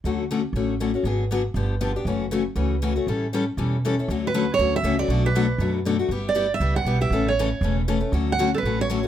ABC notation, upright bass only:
X:1
M:4/4
L:1/8
Q:"Swing" 1/4=238
K:D
V:1 name="Upright bass" clef=bass
D,,4 A,,,4 | ^G,,,4 =G,,,4 | F,,,4 C,,4 | A,,,4 E,,,4 |
D,,4 D,,2 C,,2 | B,,,4 F,,4 | G,,,4 C,,2 B,,,2 | A,,,4 E,,,4 |
D,,4 A,,,4 |]